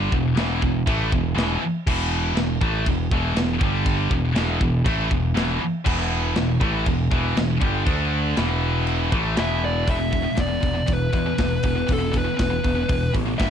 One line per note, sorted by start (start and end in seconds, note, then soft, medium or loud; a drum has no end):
0.00 0.12 G2 medium
0.00 0.12 D3 medium
0.00 0.12 G3 loud
0.12 0.35 E1 medium
0.12 0.33 E2 medium
0.12 0.33 B2 medium
0.12 kick medium
0.36 0.60 E1 loud
0.36 0.61 E2 loud
0.36 0.61 B2 loud
0.36 0.62 E3 loud
0.36 snare loud
0.36 china medium
0.62 0.85 E1 medium
0.62 0.82 E2 medium
0.62 0.82 B2 medium
0.62 kick loud
0.87 1.10 A1 medium
0.87 1.11 A2 medium
0.87 1.11 E3 medium
0.87 1.11 A3 loud
0.87 kick loud
0.87 china medium
1.12 1.35 E1 medium
1.12 1.32 E2 medium
1.12 1.32 B2 medium
1.12 kick medium
1.35 1.59 E1 medium
1.35 1.60 E2 loud
1.35 1.60 B2 loud
1.35 1.61 E3 loud
1.35 snare loud
1.35 china medium
1.60 muted picked electric bass stroke soft
1.60 muted distorted electric guitar stroke medium
1.87 2.33 E1 loud
1.87 2.35 E2 medium
1.87 2.35 B2 loud
1.87 2.37 E3 loud
1.87 kick loud
1.87 crash loud
1.87 china medium
2.35 2.59 E1 medium
2.35 2.56 E2 medium
2.35 2.56 B2 medium
2.35 snare loud
2.35 china medium
2.61 2.85 A1 medium
2.61 2.85 A2 medium
2.61 2.86 E3 loud
2.61 2.86 A3 loud
2.61 kick loud
2.85 3.10 E1 medium
2.85 3.06 E2 medium
2.85 3.06 B2 medium
2.85 kick loud
2.85 china medium
3.11 3.34 E1 loud
3.11 3.36 E2 medium
3.11 3.36 B2 medium
3.11 3.37 E3 loud
3.11 kick loud
3.35 3.59 E1 medium
3.35 3.57 E2 medium
3.35 3.57 B2 medium
3.35 snare loud
3.35 china medium
3.61 4.08 G1 medium
3.61 4.11 G2 medium
3.61 4.12 D3 medium
3.61 4.12 G3 medium
3.61 kick loud
3.86 kick loud
3.86 china medium
4.10 4.34 E1 medium
4.10 4.32 E2 medium
4.10 4.32 B2 medium
4.10 kick loud
4.34 4.58 E1 loud
4.34 4.60 E2 medium
4.34 4.60 B2 loud
4.34 4.60 E3 loud
4.34 snare loud
4.34 china medium
4.61 4.84 E1 medium
4.61 4.81 E2 medium
4.61 4.81 B2 medium
4.61 kick loud
4.85 5.09 A1 medium
4.85 5.09 A2 medium
4.85 5.10 E3 medium
4.85 5.10 A3 loud
4.85 kick loud
4.85 china medium
5.10 5.34 E1 medium
5.10 5.31 E2 medium
5.10 5.31 B2 medium
5.10 kick medium
5.34 5.59 E1 loud
5.34 5.60 E2 medium
5.34 5.60 B2 loud
5.34 5.60 E3 loud
5.34 snare loud
5.34 china medium
5.61 muted picked electric bass stroke soft
5.61 muted distorted electric guitar stroke medium
5.85 6.33 E1 loud
5.85 6.35 E2 medium
5.85 6.35 B2 loud
5.85 6.35 E3 loud
5.85 kick loud
5.85 china medium
5.85 crash loud
6.36 6.59 E1 medium
6.36 6.56 E2 medium
6.36 6.56 B2 medium
6.36 snare loud
6.36 china medium
6.60 6.84 A1 loud
6.60 6.85 A2 medium
6.60 6.86 E3 loud
6.60 6.86 A3 loud
6.60 kick loud
6.86 7.10 E1 medium
6.86 7.06 E2 medium
6.86 7.06 B2 medium
6.86 kick loud
6.86 china medium
7.11 7.35 E1 loud
7.11 7.35 E2 medium
7.11 7.35 B2 medium
7.11 7.36 E3 loud
7.11 kick loud
7.36 7.60 E1 medium
7.36 7.56 E2 medium
7.36 7.56 B2 medium
7.36 snare loud
7.36 china medium
7.60 7.85 G1 medium
7.60 7.85 G2 medium
7.60 7.83 D3 medium
7.60 7.84 G3 loud
7.60 kick loud
7.85 8.33 D2 loud
7.85 8.35 D3 loud
7.85 8.35 A3 loud
7.85 8.35 D4 loud
7.85 kick loud
7.85 china medium
8.36 9.08 E1 loud
8.36 9.11 E2 medium
8.36 9.11 B2 medium
8.36 9.11 E3 loud
8.36 snare loud
8.36 china medium
8.87 china medium
9.11 9.35 A1 loud
9.11 9.36 A2 medium
9.11 9.36 E3 medium
9.11 9.36 A3 loud
9.11 kick loud
9.36 9.84 E1 medium
9.36 9.86 E2 loud
9.36 9.86 B2 loud
9.36 9.87 E3 loud
9.36 9.64 E5 loud
9.36 snare loud
9.36 china medium
9.65 9.89 D5 medium
9.87 10.26 E1 medium
9.87 9.98 E2 medium
9.87 9.98 B2 medium
9.87 9.99 E3 loud
9.87 10.40 E5 loud
9.87 kick loud
9.87 open hi-hat medium
9.99 10.11 E2 medium
9.99 10.11 B2 medium
10.12 10.23 E2 medium
10.12 10.22 B2 medium
10.12 kick medium
10.12 open hi-hat soft
10.23 10.35 E2 medium
10.23 10.35 B2 medium
10.36 10.57 E1 medium
10.36 10.48 E2 medium
10.36 10.46 B2 medium
10.36 kick loud
10.36 snare medium
10.36 open hi-hat medium
10.41 10.90 D5 medium
10.48 10.61 E2 medium
10.48 10.60 B2 medium
10.61 10.82 E1 medium
10.61 10.74 E2 medium
10.61 10.73 B2 medium
10.61 kick medium
10.61 open hi-hat medium
10.74 10.85 E2 medium
10.74 10.86 B2 medium
10.87 11.07 E1 medium
10.87 11.10 E2 medium
10.87 11.10 B2 medium
10.87 kick loud
10.87 open hi-hat medium
10.93 11.92 B4 medium
11.13 11.32 E2 medium
11.13 11.25 E2 medium
11.13 11.25 B2 medium
11.13 kick medium
11.13 open hi-hat medium
11.26 11.38 E2 medium
11.26 11.38 B2 medium
11.38 11.58 E1 medium
11.38 11.61 E2 medium
11.38 11.61 B2 medium
11.38 kick loud
11.38 snare loud
11.38 open hi-hat medium
11.63 11.83 E1 medium
11.63 11.74 E2 medium
11.63 11.74 B2 medium
11.63 kick medium
11.63 open hi-hat medium
11.75 11.86 E2 medium
11.75 11.87 B2 medium
11.87 12.27 E1 medium
11.87 11.98 E2 medium
11.87 11.98 B2 medium
11.87 kick loud
11.87 open hi-hat medium
11.93 12.16 A4 medium
11.99 12.11 E2 medium
11.99 12.11 B2 medium
12.12 12.24 E2 medium
12.12 12.23 B2 medium
12.12 kick medium
12.12 open hi-hat medium
12.18 13.12 B4 medium
12.25 12.36 E2 medium
12.25 12.36 B2 medium
12.37 12.58 E1 medium
12.37 12.49 E2 medium
12.37 12.49 B2 medium
12.37 kick loud
12.37 snare medium
12.37 open hi-hat medium
12.50 12.63 E2 medium
12.50 12.63 B2 medium
12.64 12.83 E1 medium
12.64 12.74 E2 medium
12.64 12.74 B2 medium
12.64 kick medium
12.64 open hi-hat medium
12.75 12.87 E2 medium
12.75 12.88 B2 medium
12.88 13.08 E1 medium
12.88 13.11 E2 medium
12.88 13.11 B2 medium
12.88 kick loud
12.88 open hi-hat medium
13.13 13.33 A1 medium
13.13 13.25 E2 medium
13.13 13.24 B2 medium
13.13 kick medium
13.13 open hi-hat medium
13.26 13.37 E2 medium
13.26 13.38 B2 medium
13.38 13.50 G1 medium
13.38 13.50 G2 medium
13.38 13.50 D3 loud
13.38 13.50 G3 medium
13.38 13.50 E5 loud
13.38 kick loud
13.38 snare loud
13.38 open hi-hat medium